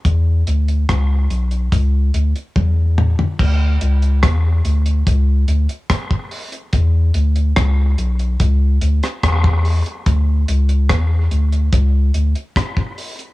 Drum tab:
CC |----------------|x---------------|----------------|----------------|
HH |x-xxx-xxx-xx----|--xxx-xxx-xxx-ox|x-xxx-xxx-xxx-ox|x-xxx-xxx-xxx-ox|
SD |----r-----------|----r-------r---|----r------rr---|----r-------r---|
T1 |------------o---|----------------|----------------|----------------|
T2 |--------------o-|----------------|----------------|----------------|
FT |---------------o|----------------|----------------|----------------|
BD |o---o---o---o---|o---o---o---oo--|o---o---o---oo--|o---o---o---oo--|